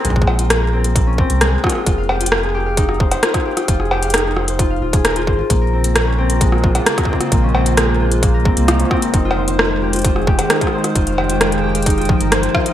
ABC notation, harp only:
X:1
M:4/4
L:1/16
Q:1/4=132
K:Fdor
V:1 name="Harp"
A, A, F F B, B C B, B, _D C B A, A, F F | F f G F F A G f E E c c F f G F | F A G f E E c c F f F A B F c F | B, B C B, B, _D C B A, B, F F B, B C B, |
B, _D C B A, B, F F B, B C B, B, D C B | E F c c F f G F F A G f E F c c | F f G F F A G f E F F, B c F F E |]